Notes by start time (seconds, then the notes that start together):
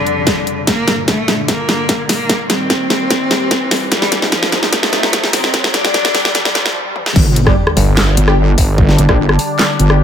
Already playing: F2 C3 D3 G3, riser
0.07 closed hi-hat
0.27 kick, snare, closed hi-hat
0.47 closed hi-hat
0.67 G2 A#2 D3 A#3, kick, snare, closed hi-hat
0.88 snare, closed hi-hat
1.08 A3, kick, snare, closed hi-hat
1.28 snare, closed hi-hat
1.48 A#3, kick, snare, closed hi-hat
1.69 snare, closed hi-hat
1.89 kick, snare, closed hi-hat
2.09 A#3, snare, open hi-hat
2.29 D#2 A#2 G3, kick, snare, closed hi-hat
2.50 C4, snare, closed hi-hat
2.70 kick, snare, closed hi-hat
2.90 snare, closed hi-hat
3.10 kick, snare, closed hi-hat
3.31 snare, closed hi-hat
3.51 kick, snare, closed hi-hat
3.71 snare, open hi-hat
3.91 A#2 C3 G3 D#4, kick, snare, closed hi-hat
4.02 snare
4.12 snare, closed hi-hat
4.22 snare
4.32 F3, kick, snare, closed hi-hat
4.43 snare
4.52 snare, closed hi-hat
4.63 snare
4.72 A3, kick, snare, closed hi-hat
4.83 snare
4.93 snare, closed hi-hat
5.03 snare
5.13 kick, snare, closed hi-hat
5.24 snare
5.33 C4, snare, open hi-hat
5.44 snare
5.54 F2 G3, kick, snare, closed hi-hat
5.64 snare
5.74 D4, snare, closed hi-hat
5.84 snare, closed hi-hat
5.94 kick, snare, closed hi-hat
6.05 snare, closed hi-hat
6.15 snare, open hi-hat
6.25 snare
6.35 D2 F3, kick, snare, closed hi-hat
6.45 snare
6.55 snare, closed hi-hat
6.66 snare
6.96 high tom
7.06 snare
7.16 G1 D3 G3 D4, kick, crash, sub drop
7.36 closed hi-hat
7.47 G3 D4 G4, kick, cross-stick
7.67 cross-stick
7.77 G1, open hi-hat
7.97 snare, clap
8.17 G1, closed hi-hat
8.28 G3 D4 G4, cross-stick
8.58 G1, kick, open hi-hat
8.78 kick
8.89 snare
8.98 G1, closed hi-hat
9.09 A#1 G3 D4 G4, kick, cross-stick
9.19 G1
9.29 cross-stick
9.39 open hi-hat
9.59 snare, clap
9.79 G1, closed hi-hat
9.90 G3 D4 G4, cross-stick